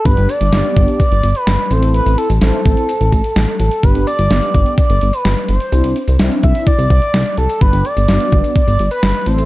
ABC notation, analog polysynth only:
X:1
M:4/4
L:1/8
Q:1/4=127
K:G
V:1 name="Analog polysynth"
[B,DG] z [B,DG]2 z3 [CEA]- | [CEA] z [CEc]2 z4 | [B,DG] z [B,DG]2 z4 | [CDE] z [CDE]2 z4 |
[B,DG] z [B,DF]2 z3 [CEA] |]